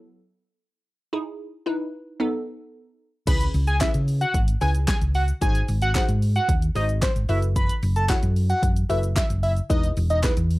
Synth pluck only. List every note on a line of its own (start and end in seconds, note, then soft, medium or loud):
0.00 0.21 F#3 medium
0.00 0.21 B3 medium
0.00 0.21 E4 medium
0.00 0.21 A4 loud
1.13 1.47 D#4 medium
1.13 1.47 E4 medium
1.13 1.47 G#4 loud
1.66 2.19 D#4 medium
1.66 2.20 E4 medium
1.66 2.20 B4 medium
2.20 3.06 B3 medium
2.20 3.06 D#4 medium
2.20 3.06 A4 loud
3.27 3.61 C#4 medium
3.27 3.62 E4 medium
3.27 3.62 G#4 medium
3.27 3.62 B4 medium
3.81 4.32 C#4 medium
3.81 4.32 E4 medium
3.81 4.33 G#4 medium
3.81 4.33 B4 medium
4.61 5.13 C#4 medium
4.61 5.13 E4 medium
4.61 5.13 G#4 medium
4.61 5.13 B4 medium
5.41 5.76 D#4 medium
5.41 5.76 F#4 medium
5.41 5.76 G#4 medium
5.41 5.76 C5 medium
5.95 6.47 D#4 medium
5.95 6.47 F#4 medium
5.95 6.47 G#4 medium
5.95 6.47 C5 medium
6.75 7.27 D#4 medium
6.75 7.27 F#4 medium
6.75 7.27 G#4 medium
6.75 7.27 C5 medium
7.29 7.93 E4 medium
7.29 7.93 F#4 medium
7.29 7.93 A4 medium
7.29 7.93 B4 medium
8.09 8.61 E4 medium
8.09 8.61 F#4 medium
8.09 8.61 A4 medium
8.09 8.61 C#5 medium
8.89 9.41 E4 medium
8.89 9.41 F#4 medium
8.89 9.41 A4 medium
8.89 9.41 B4 medium
9.70 10.04 D#4 medium
9.70 10.04 E4 medium
9.70 10.04 G#4 medium
9.70 10.05 B4 medium
10.23 10.59 D#4 medium
10.23 10.59 E4 medium
10.23 10.59 G#4 medium
10.23 10.59 B4 medium